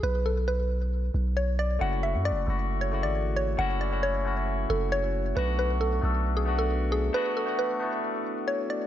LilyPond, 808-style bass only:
\new Staff \with { instrumentName = "808-style bass" } { \clef bass \time 4/4 \key fis \minor \tempo 4 = 135 b,,2~ b,,8 b,,4. | fis,,8. fis,16. fis,,16. fis,,4~ fis,,16 gis,,4~ gis,,16 | fis,,2~ fis,,8 fis,,4. | b,,4. b,,2~ b,,8 |
r1 | }